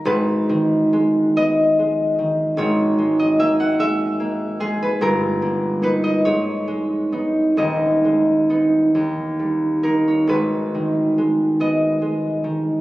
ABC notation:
X:1
M:6/8
L:1/16
Q:3/8=47
K:G#m
V:1 name="Harp"
[Bd]6 d6 | c3 d e f e4 G B | A4 B d c6 | d8- d2 A c |
B6 d6 |]
V:2 name="Harp" clef=bass
[G,,,G,,]2 D,2 G,2 B,2 G,2 D,2 | [G,,,G,,]2 G,2 A,2 G,2 A,2 G,2 | [=G,,,=G,,]2 A,2 [A,D]2 ^G,,2 G,2 [B,D]2 | [D,,,D,,]2 G,2 [B,D]2 D,,2 =G,2 [A,D]2 |
[G,,,G,,]2 D,2 G,2 B,2 G,2 D,2 |]